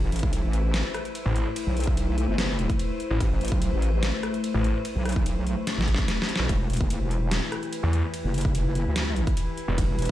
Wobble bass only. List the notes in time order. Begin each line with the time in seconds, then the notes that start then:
Already playing: A1
0.12 A1
0.23 B1
0.43 A1
1.67 B1
2.28 G1
3.21 A1
3.41 A1
3.52 B1
3.72 A1
4.96 B1
5.78 A1
6.49 E1
6.70 E1
6.81 F#1
7.01 E1
8.24 F#1
8.86 D2
9.78 E1
9.99 E1